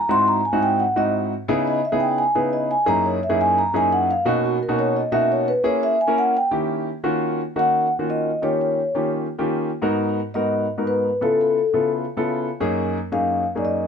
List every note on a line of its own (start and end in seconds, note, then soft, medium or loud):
0.09 0.39 G#2 medium
0.09 0.39 C4 medium
0.09 0.39 D#4 medium
0.09 0.39 E4 medium
0.09 0.39 F#4 medium
0.09 0.27 C6 loud
0.28 0.44 A#5 loud
0.45 0.61 G#5 medium
0.53 0.83 G#2 medium
0.53 0.83 C4 medium
0.53 0.83 D#4 medium
0.53 0.83 E4 medium
0.53 0.83 F#4 medium
0.63 0.79 G5 loud
0.80 0.96 F#5 medium
0.96 1.32 G#2 medium
0.96 1.32 C4 medium
0.96 1.32 D#4 medium
0.96 1.32 E4 medium
0.96 1.32 F#4 medium
0.96 1.07 D#5 loud
1.48 1.79 C#3 medium
1.48 1.79 B3 medium
1.48 1.79 D#4 medium
1.48 1.79 E4 medium
1.48 1.79 G#4 medium
1.67 1.83 D#5 medium
1.85 2.01 E5 medium
1.92 2.22 C#3 medium
1.92 2.22 B3 medium
1.92 2.22 D#4 medium
1.92 2.22 E4 medium
1.92 2.22 G#4 medium
2.00 2.17 G5 medium
2.18 2.35 G#5 loud
2.35 2.71 C#3 medium
2.35 2.71 B3 medium
2.35 2.71 D#4 medium
2.35 2.71 E4 medium
2.35 2.72 G#4 medium
2.35 2.52 B4 medium
2.53 2.69 D#5 medium
2.71 2.87 G#5 loud
2.86 3.17 F#2 medium
2.86 3.17 A#3 medium
2.86 3.17 C#4 medium
2.86 3.17 D#4 medium
2.86 3.17 E4 medium
2.86 3.17 G#4 medium
2.86 3.04 A#5 loud
3.06 3.22 C#5 medium
3.23 3.39 E5 medium
3.29 3.60 F#2 medium
3.29 3.60 A#3 medium
3.29 3.60 C#4 medium
3.29 3.60 D#4 medium
3.29 3.60 E4 medium
3.29 3.60 G#4 medium
3.41 3.57 G#5 loud
3.58 3.74 A#5 medium
3.73 4.10 F#2 medium
3.73 4.10 A#3 medium
3.73 4.10 C#4 medium
3.73 4.10 D#4 medium
3.73 4.10 E4 medium
3.73 4.10 G#4 medium
3.73 3.92 G#5 loud
3.92 4.09 F#5 loud
4.11 4.26 F5 loud
4.25 4.56 B2 medium
4.25 4.56 A#3 medium
4.25 4.56 C#4 medium
4.25 4.56 D#4 medium
4.25 4.56 F#4 medium
4.25 4.44 D#5 medium
4.45 4.61 F#4 medium
4.63 4.78 A#4 medium
4.68 4.99 B2 medium
4.68 4.99 A#3 medium
4.68 4.99 C#4 medium
4.68 4.99 D#4 medium
4.68 4.99 F#4 medium
4.79 4.95 C#5 loud
4.97 5.13 D#5 medium
5.12 5.49 B2 medium
5.12 5.48 A#3 medium
5.12 5.49 C#4 medium
5.12 5.49 D#4 medium
5.12 5.49 F#4 medium
5.12 5.29 E5 loud
5.32 5.48 C#5 medium
5.48 5.64 B4 loud
5.64 5.94 A#3 medium
5.64 5.95 C#4 medium
5.64 5.95 E4 medium
5.64 5.95 G#4 medium
5.64 5.82 C#5 medium
5.83 5.99 E5 loud
6.01 6.17 G#5 medium
6.07 6.34 A#3 medium
6.07 6.34 C#4 medium
6.07 6.34 E4 medium
6.07 6.34 A#4 medium
6.18 6.34 F#5 loud
6.37 6.46 G5 loud
6.51 6.88 D#3 medium
6.51 6.88 A#3 medium
6.51 6.88 C#4 medium
6.51 6.88 E4 medium
6.51 6.88 G4 medium
7.04 7.40 D#3 medium
7.04 7.40 A#3 medium
7.04 7.40 C#4 medium
7.04 7.40 F4 medium
7.04 7.40 F#4 medium
7.56 7.86 D#3 medium
7.56 7.86 A#3 medium
7.56 7.86 C#4 medium
7.56 7.86 D#4 medium
7.56 7.86 F#4 medium
7.56 7.90 F#5 loud
7.99 8.29 D#3 medium
7.99 8.30 A#3 medium
7.99 8.29 C#4 medium
7.99 8.30 F4 medium
7.99 8.30 F#4 medium
8.10 8.41 D#5 medium
8.42 8.79 D#3 medium
8.42 8.79 A#3 medium
8.42 8.79 C#4 medium
8.42 8.79 F4 medium
8.42 8.79 G4 medium
8.42 8.60 C#5 medium
8.61 9.09 C#5 medium
8.95 9.25 D#3 medium
8.95 9.25 A#3 medium
8.95 9.25 C#4 medium
8.95 9.26 F4 medium
8.95 9.26 G4 medium
9.38 9.69 D#3 medium
9.38 9.69 A#3 medium
9.38 9.69 C#4 medium
9.38 9.69 F4 medium
9.38 9.69 G4 medium
9.82 10.18 G#2 medium
9.82 10.18 B3 medium
9.82 10.19 D#4 medium
9.82 10.19 F#4 medium
9.82 10.19 A#4 medium
10.34 10.65 G#2 medium
10.34 10.65 B3 medium
10.34 10.65 D#4 medium
10.34 10.65 F#4 medium
10.34 10.65 A#4 medium
10.34 10.66 D#5 medium
10.78 11.08 G#2 medium
10.78 11.08 B3 medium
10.78 11.08 D#4 medium
10.78 11.08 F#4 medium
10.78 11.08 A#4 medium
10.87 11.19 B4 medium
11.21 11.58 C#3 medium
11.21 11.58 B3 medium
11.21 11.58 E4 medium
11.21 11.58 F4 medium
11.21 11.58 A4 medium
11.21 11.40 A4 medium
11.41 11.88 A4 medium
11.73 12.04 C#3 medium
11.73 12.04 B3 medium
11.73 12.04 E4 medium
11.73 12.04 F4 medium
11.73 12.04 A4 medium
12.17 12.47 C#3 medium
12.17 12.47 B3 medium
12.17 12.47 E4 medium
12.17 12.47 F4 medium
12.17 12.48 A4 medium
12.60 12.97 F#2 medium
12.60 12.97 A#3 medium
12.60 12.97 C#4 medium
12.60 12.97 D#4 medium
12.60 12.97 G#4 medium
13.12 13.43 F#2 medium
13.12 13.43 A#3 medium
13.12 13.43 C#4 medium
13.12 13.43 D#4 medium
13.12 13.43 G#4 medium
13.12 13.45 F5 medium
13.55 13.86 F#2 medium
13.55 13.86 A#3 medium
13.55 13.86 C#4 medium
13.55 13.86 D#4 medium
13.55 13.86 G#4 medium
13.55 13.65 D5 medium
13.65 13.87 D#5 medium